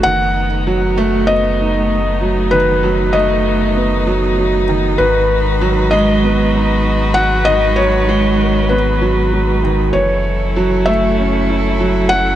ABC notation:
X:1
M:4/4
L:1/8
Q:1/4=97
K:G#phr
V:1 name="Felt piano"
f4 d4 | B2 d4- d z | B3 d4 f | d c3 B3 z |
c3 e4 f |]
V:2 name="String quartet"
[A,B,D]8- | [A,B,D]8 | [G,FB]8- | [G,FB]8 |
[F,CEA]8 |]
V:3 name="Grand piano" clef=bass
D, z F, A, B, D z F, | D, F, A, z B, F, F, D, | D, z F, G, B, D z F, | D, F, G, z B, F, F, D, |
E, z F, A, C E F, F, |]
V:4 name="Sub bass" clef=bass
F,,,8- | F,,,8 | G,,,8- | G,,,8 |
F,,,8 |]